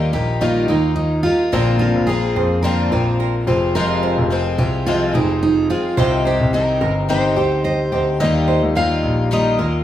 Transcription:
Already playing: twelve-string acoustic guitar G3 A#3 D#4 F4, steel-string acoustic guitar A#4
0.13 grand piano A#1, twelve-string acoustic guitar A#3 D#4 F4, steel-string acoustic guitar G4
0.41 twelve-string acoustic guitar D#3 G3 A#3 D#4 F4, steel-string acoustic guitar F4
0.68 grand piano D#2, twelve-string acoustic guitar A#3 D#4 F4, steel-string acoustic guitar D#4, nylon-string guitar A#4
0.96 steel-string acoustic guitar D#4
1.23 twelve-string acoustic guitar A#3 D#4 F4, steel-string acoustic guitar F4, nylon-string guitar G4
1.52 grand piano A#1, twelve-string acoustic guitar A#2 D3 F3 A#3 C4 F4, nylon-string guitar A#4
1.79 steel-string acoustic guitar F4, nylon-string guitar A#4
1.95 grand piano A#1
2.07 twelve-string acoustic guitar F3 A#3 C4 F4, steel-string acoustic guitar G#4
2.36 grand piano F2, nylon-string guitar C5
2.63 twelve-string acoustic guitar A#2 D3 F3 A#3 C4 F4, steel-string acoustic guitar A#4
2.91 grand piano A#1, twelve-string acoustic guitar F3 A#3 C4 F4, nylon-string guitar D5
3.20 nylon-string guitar A#4
3.47 grand piano F1, twelve-string acoustic guitar F3 G#3 C4 F4, nylon-string guitar C5
3.75 twelve-string acoustic guitar F2 C3 F3 G#3 C4 F4, steel-string acoustic guitar A#4
4.03 nylon-string guitar C5
4.18 grand piano F1
4.30 twelve-string acoustic guitar F3 G#3 C4 F4
4.58 grand piano C2, twelve-string acoustic guitar F3 G#3 C4 F4, steel-string acoustic guitar G4
4.86 twelve-string acoustic guitar F2 C3 F3 G#3 C4 F4, steel-string acoustic guitar F4
5.13 grand piano F1, twelve-string acoustic guitar F3 G#3 C4 F4, steel-string acoustic guitar D#4, nylon-string guitar A#4
5.43 steel-string acoustic guitar D#4
5.70 twelve-string acoustic guitar F3 G#3 C4 F4, steel-string acoustic guitar F4, nylon-string guitar G#4
5.97 grand piano C2, twelve-string acoustic guitar C3 D#3 C4 D#4 G4, nylon-string guitar C5
6.25 steel-string acoustic guitar G4, nylon-string guitar C5
6.41 grand piano C2
6.53 twelve-string acoustic guitar D#3 C4 D#4 G4, steel-string acoustic guitar A#4
6.81 grand piano G1, nylon-string guitar A#4
7.09 twelve-string acoustic guitar C3 D#3 C4 D#4 G4, steel-string acoustic guitar C5
7.36 grand piano D2, twelve-string acoustic guitar C4 D#4 G4, nylon-string guitar C5
7.64 steel-string acoustic guitar C5, nylon-string guitar D#5
7.92 grand piano D2, twelve-string acoustic guitar C4 D#4 G4, nylon-string guitar C5
8.20 grand piano D#2, twelve-string acoustic guitar D#3 G3 A#3 D#4 F4, steel-string acoustic guitar D#5
8.48 nylon-string guitar C5
8.63 grand piano D#2
8.75 twelve-string acoustic guitar G3 A#3 D#4 F4, steel-string acoustic guitar F5
9.03 grand piano A#1
9.31 twelve-string acoustic guitar D#3 G3 A#3 D#4 F4, steel-string acoustic guitar D#5
9.59 grand piano D#2, twelve-string acoustic guitar A#3 D#4 F4, nylon-string guitar A#4

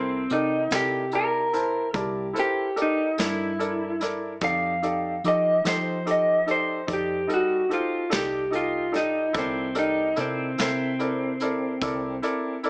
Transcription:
Already playing: fingered electric bass C2, clean electric guitar C4, upright piano E4 A4 A#4 C5
0.30 fingered electric bass C3, clean electric guitar D#4, upright piano G4 A4 A#4 D5, closed hi-hat
0.71 fingered electric bass C3, upright piano E4 A4 A#4 D5, snare, closed hi-hat
0.75 clean electric guitar G4
1.12 upright piano E4 A#4 D5 A5, clean electric guitar A#4, closed hi-hat
1.53 upright piano E4 A#4 C5 A5, closed hi-hat
1.94 fingered electric bass C2, upright piano E4 A#4 D5 A5, kick, closed hi-hat
1.99 clean electric guitar G4
2.33 upright piano E4 A4 A#4 C5, closed hi-hat
2.40 clean electric guitar G4
2.76 upright piano G4 A4 A#4 D5, closed hi-hat
2.82 clean electric guitar D#4
3.18 fingered electric bass G2, upright piano E4 A4 A#4 D5, clean electric guitar E4, snare, closed hi-hat
3.59 upright piano E4 A4 A#4 D5, closed hi-hat
4.00 upright piano E4 A4 A#4 D5, snare, closed hi-hat
4.41 fingered electric bass F2, upright piano D#4 G4 A4 D5, clean electric guitar F5, kick, closed hi-hat
4.82 upright piano D#4 G4 A4 D5, closed hi-hat
5.24 fingered electric bass F3, upright piano D#4 G4 A4 D6, clean electric guitar D#5, closed hi-hat
5.64 fingered electric bass F3, upright piano D#4 G4 A4 C5, snare, closed hi-hat
5.69 clean electric guitar C5
6.05 upright piano D#4 G4 A4 D6, closed hi-hat
6.11 clean electric guitar D#5
6.46 upright piano D#4 G4 A4 D5, closed hi-hat
6.51 clean electric guitar C5
6.87 fingered electric bass F2, upright piano D#4 G4 A4 D5, kick, closed hi-hat
6.93 clean electric guitar G4
7.27 upright piano G3 D#4 A4 D#5, closed hi-hat
7.34 clean electric guitar F#4
7.69 upright piano D#4 G4 A4 C5, closed hi-hat
7.73 clean electric guitar F4
8.10 fingered electric bass C2, upright piano D#4 G4 A4 D5, clean electric guitar G4, snare, closed hi-hat
8.51 upright piano D#4 G4 A4 D#5, closed hi-hat
8.55 clean electric guitar F4
8.92 upright piano D#4 G4 A4 D5, snare, closed hi-hat
8.96 clean electric guitar D#4
9.33 fingered electric bass C2, upright piano E4 A4 A#4 D5, kick, closed hi-hat
9.38 clean electric guitar C4
9.75 clean electric guitar D#4, upright piano G4 A4 A#4 D5, closed hi-hat
10.16 fingered electric bass C3, upright piano E4 A4 A#4 D5, closed hi-hat
10.20 clean electric guitar C4
10.58 fingered electric bass C3, clean electric guitar C4, upright piano E4 A4 A#4 E5, snare, closed hi-hat
10.99 upright piano E4 A4 A#4 D5, closed hi-hat
11.40 upright piano E4 A4 A#4 D5, closed hi-hat
11.82 fingered electric bass C2, upright piano E4 A4 A#4 D5, kick, closed hi-hat
12.22 upright piano E4 A4 A#4 D5, closed hi-hat
12.63 upright piano E4 A4 A#4 D5, closed hi-hat

